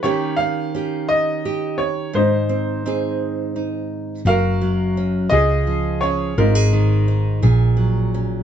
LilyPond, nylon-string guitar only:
\new Staff \with { instrumentName = "Nylon-string guitar" } { \time 6/8 \key aes \mixolydian \tempo 4. = 57 << { <bes des' g'>8 des'8 <des' g'>4 g'4 | r8 c'8 <c' ees' aes'>4 ees'4 | ges'4 des'8 f'4 des'8 | f'16 aes'8. ees'8 aes'4 des'8 | } \\ { ees2. | aes,2. | ges,8 ges4 des8 f4 | aes,8 ees4 bes,8 ges4 | } >> }